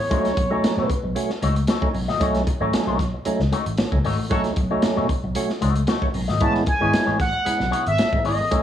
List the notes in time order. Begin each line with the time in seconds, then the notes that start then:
Already playing: C#5
0.00 A1
0.10 B1 F#3 A3 C#4 D#4 F#4 C#5, kick, closed hi-hat
0.24 muted clean electric guitar stroke, snare, closed hi-hat
0.37 B1, muted clean electric guitar stroke, kick, closed hi-hat
0.51 F#3 A3 C#4 D#4 F#4 C#5
0.64 muted fingered electric bass stroke, muted clean electric guitar stroke, snare, closed hi-hat
0.77 B2 A3 D#4 F#4 C#5
0.88 B4, muted clean electric guitar stroke, kick, closed hi-hat
1.04 B1, muted clean electric guitar stroke
1.15 F#3 A3 C#4 F#4, closed hi-hat
1.30 muted clean electric guitar stroke, snare
1.42 C#2 A3 C#4 D#4 F#4 C#5, closed hi-hat
1.56 muted clean electric guitar stroke, closed hi-hat
1.67 A3 D#4 F#4 C#5, snare, closed hi-hat
1.81 F#3 A3 C#4 D#4, kick
1.93 B1 C#4 D#4, muted clean electric guitar stroke, open hi-hat
2.08 A1 A3 D#4 F#4 D#5, snare
2.20 B1 F#3 A3 C#4 D#4 F#4 C#5, kick, closed hi-hat
2.35 muted clean electric guitar stroke, snare, closed hi-hat
2.47 muted clean electric guitar stroke, kick, closed hi-hat
2.60 A1 F#3 A3 C#4 D#4 F#4 C#5
2.73 muted fingered electric bass stroke, muted clean electric guitar stroke, snare, closed hi-hat
2.87 B1 A3 D#4 F#4 C#5
2.99 muted clean electric guitar stroke, kick, snare, closed hi-hat
3.14 muted clean electric guitar stroke
3.25 F#3 A3 C#4 D#4, muted fingered electric bass stroke, muted clean electric guitar stroke, closed hi-hat
3.40 C#2, muted clean electric guitar stroke, snare
3.52 A3 C#4 D#4 F#4 C#5, closed hi-hat
3.66 A1, muted clean electric guitar stroke, closed hi-hat
3.78 muted clean electric guitar stroke, snare, closed hi-hat
3.92 C#2 F#3 A3 C#4 D#4, muted clean electric guitar stroke, kick
4.04 G#1 A3 C#4 D#4 F#4 C#5, open hi-hat
4.19 A1, muted clean electric guitar stroke
4.30 B1 F#3 A3 C#4 D#4 F#4 A4 C#5, kick, closed hi-hat
4.44 muted clean electric guitar stroke, snare, closed hi-hat
4.56 B1, muted clean electric guitar stroke, kick, closed hi-hat
4.70 F#3 A3 C#4 D#4 F#4 C#5
4.82 muted clean electric guitar stroke, muted fingered electric bass stroke, snare, closed hi-hat
4.96 B2 A3 D#4 F#4 C#5
5.09 muted clean electric guitar stroke, kick, closed hi-hat
5.24 B1, muted clean electric guitar stroke
5.35 F#3 A3 C#4 F#4, closed hi-hat
5.49 muted clean electric guitar stroke, snare
5.61 C#2 A3 C#4 D#4 F#4 C#5, closed hi-hat
5.75 muted clean electric guitar stroke, closed hi-hat
5.87 A3 D#4 F#4 C#5, snare, closed hi-hat
6.02 F#3 A3 C#4 F#4, kick
6.14 B1 C#4 D#4, muted clean electric guitar stroke, open hi-hat
6.28 G#1 A3 D#4 F#4 D#5, snare
6.40 A1 G#3 B3 C#4 E4 G#4 C#5 A5, kick, closed hi-hat
6.55 muted clean electric guitar stroke, snare
6.66 G#5, muted clean electric guitar stroke, kick, closed hi-hat
6.81 G#1 G#3 B3 C#4 E4 G#4 C#5
6.93 muted fingered electric bass stroke, muted clean electric guitar stroke, snare, closed hi-hat
7.06 A1 B3 E4 G#4 C#5
7.19 F#5, muted clean electric guitar stroke, kick, snare, closed hi-hat
7.33 muted clean electric guitar stroke
7.45 G#3 B3 C#4 E4, muted clean electric guitar stroke, muted fingered electric bass stroke, closed hi-hat
7.59 B1, muted clean electric guitar stroke, snare
7.71 B3 C#4 E4 F#4 G#4 C#5, closed hi-hat
7.86 G#1 E5, muted clean electric guitar stroke, closed hi-hat
7.97 muted clean electric guitar stroke, snare, closed hi-hat
8.12 A1 G#3 B3 C#4 D#4, muted clean electric guitar stroke, kick
8.24 G#1 B3 C#4 E4 G#4 C#5 D#5, open hi-hat
8.39 A1, muted clean electric guitar stroke
8.51 B1 F#3 A3 C#4 D#4 F#4 C#5, kick, closed hi-hat